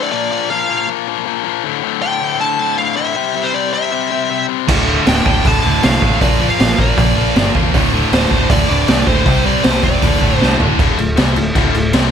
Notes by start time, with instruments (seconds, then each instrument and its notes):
Already playing: distorted electric guitar D2 A2 D3
0.03 lead electric guitar D5
0.11 distorted electric guitar A#2 F3 A#3, lead electric guitar D5
0.31 distorted electric guitar A#2 F3 A#3, lead electric guitar D5
0.50 distorted electric guitar A#2 F3 A#3, lead electric guitar F5
0.68 distorted electric guitar A#2 F3 A#3
0.88 distorted electric guitar A#2 F3 A#3
1.07 distorted electric guitar A#2 F3 A#3
1.26 distorted electric guitar A#2 F3 A#3
1.45 distorted electric guitar A#2 F3 A#3
1.64 distorted electric guitar D2 A2 D3
1.83 distorted electric guitar D2 A2 D3
2.02 distorted electric guitar D2 A2 D3, lead electric guitar G5
2.22 distorted electric guitar D2 A2 D3
2.40 distorted electric guitar D2 A2 D3, lead electric guitar A5
2.59 distorted electric guitar D2 A2 D3
2.78 distorted electric guitar D2 A2 D3, lead electric guitar F5
2.96 distorted electric guitar D2 A2 D3, lead electric guitar E5
3.16 distorted electric guitar C3 G3 C4
3.35 distorted electric guitar C3 G3 C4
3.44 lead electric guitar C5
3.54 distorted electric guitar C3 G3 C4, lead electric guitar D5
3.73 distorted electric guitar C3 G3 C4, lead electric guitar E5
3.91 distorted electric guitar C3 G3 C4
4.11 distorted electric guitar C3 G3 C4
4.30 distorted electric guitar C3 G3 C4
4.48 distorted electric guitar C3 G3 C4
4.68 fingered electric bass D1, distorted electric guitar D2 A2 D3, kick, crash
4.86 distorted electric guitar D2 A2 D3
5.05 fingered electric bass D1, distorted electric guitar D2 A2 D3, lead electric guitar G5, snare, open hi-hat
5.17 snare
5.25 fingered electric bass D1, distorted electric guitar D2 A2 D3, lead electric guitar G5, kick
5.44 fingered electric bass D1, distorted electric guitar D2 A2 D3, lead electric guitar A5, kick, open hi-hat
5.63 fingered electric bass D1, distorted electric guitar D2 A2 D3
5.83 fingered electric bass C2, distorted electric guitar D2 A2 D3, lead electric guitar F5, snare, open hi-hat
6.02 fingered electric bass A1, distorted electric guitar D2 A2 D3, kick
6.20 fingered electric bass A#1, distorted electric guitar A#2 F3 A#3, lead electric guitar D5, kick, open hi-hat
6.39 distorted electric guitar A#2 F3 A#3
6.50 lead electric guitar F5
6.58 fingered electric bass A#1, distorted electric guitar A#2 F3 A#3, lead electric guitar F5, snare, open hi-hat
6.70 snare
6.77 fingered electric bass A#1, distorted electric guitar A#2 F3 A#3, lead electric guitar D5, kick
6.97 fingered electric bass A#1, distorted electric guitar A#2 F3 A#3, kick, open hi-hat
7.15 fingered electric bass A#1, distorted electric guitar A#2 F3 A#3
7.35 fingered electric bass G1, distorted electric guitar A#2 F3 A#3, snare, open hi-hat
7.54 fingered electric bass E2, distorted electric guitar A#2 F3 A#3, kick
7.73 fingered electric bass D1, distorted electric guitar D2 A2 D3, kick, open hi-hat
7.92 distorted electric guitar D2 A2 D3
8.12 fingered electric bass D1, distorted electric guitar D2 A2 D3, lead electric guitar C5, snare, open hi-hat
8.30 fingered electric bass D1, distorted electric guitar D2 A2 D3, kick
8.49 fingered electric bass D1, distorted electric guitar D2 A2 D3, lead electric guitar D5, kick, open hi-hat
8.69 fingered electric bass D1, distorted electric guitar D2 A2 D3, lead electric guitar D5
8.88 fingered electric bass C2, distorted electric guitar D2 A2 D3, lead electric guitar D5, snare, open hi-hat
9.07 fingered electric bass D1, distorted electric guitar D2 A2 D3, lead electric guitar C5, kick
9.26 fingered electric bass C2, distorted electric guitar C3 G3 C4, kick, open hi-hat
9.45 distorted electric guitar C3 G3 C4, lead electric guitar D5
9.64 fingered electric bass C2, distorted electric guitar C3 G3 C4, lead electric guitar C5, snare, open hi-hat
9.83 fingered electric bass E1, distorted electric guitar C3 G3 C4, lead electric guitar D5, kick
10.02 fingered electric bass D1, distorted electric guitar D2 A2 D3, kick, open hi-hat
10.22 fingered electric bass D1, distorted electric guitar D2 A2 D3, kick
10.37 fingered electric bass C2, distorted electric guitar D2, lead electric guitar C5
10.41 distorted electric guitar A2 D3, snare
10.60 fingered electric bass D1, distorted electric guitar D2 A2 D3, floor tom
10.79 fingered electric bass D1, distorted electric guitar D2 A2 D3, kick, crash
10.98 fingered electric bass D1, distorted electric guitar D2 A2, crash
11.16 fingered electric bass C2, distorted electric guitar C3 G3 C4, snare, crash
11.36 fingered electric bass D1, distorted electric guitar D2 A2, crash
11.55 fingered electric bass D1, distorted electric guitar D2 A2 D3, kick, crash
11.74 fingered electric bass D1, distorted electric guitar D2 A2, crash
11.93 fingered electric bass C2, distorted electric guitar C3 G3 C4, snare, crash